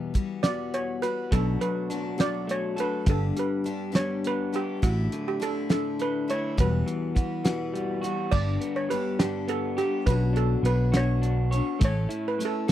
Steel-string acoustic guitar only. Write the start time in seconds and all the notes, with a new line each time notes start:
Already playing: E2 B2 E3 G3 B3
0.14 E3 G3 B3 F#4
0.44 E2 B2 E3 G3 B3 F#4
1.02 E3 G3 B3 F#4
1.32 B2 F#3 A3 D4 F#4
1.90 F#3 A3 D4 F#4
2.18 B2 F#3 A3 D4 F#4
2.77 A3 D4 F#4
3.07 G2 D3 G3 B3 D4 G4
3.64 G3 B3 D4 G4
3.92 G2 D3 G3 B3 D4 G4
4.52 G3 B3 D4 G4
4.82 A2 D3 A3 D4 E4
5.40 D3 A3 D4 E4
5.69 A2 D3 A3 D4 E4
6.28 A3 D4 E4
6.58 E2 B2 E3 G3 B3 F#4
7.16 E3 G3 B3 F#4
7.45 E2 B2 E3 G3 B3 F#4
8.03 E3 G3 B3 F#4
8.32 G2 D3 G3 B3 D4 G4
8.91 G3 B3 D4 G4
9.19 G2 D3 G3 B3 D4 G4
9.78 G3 B3 D4 G4
10.08 B2 F#3 B3 D4 F#4 C#5
10.65 B3 D4 F#4 C#5
10.94 B2 F#3 B3 D4 F#4 C#5
11.53 B3 D4 F#4 C#5
11.81 A2 A3 C#4 E4 A4
12.40 A3 C#4 E4 A4
12.68 A4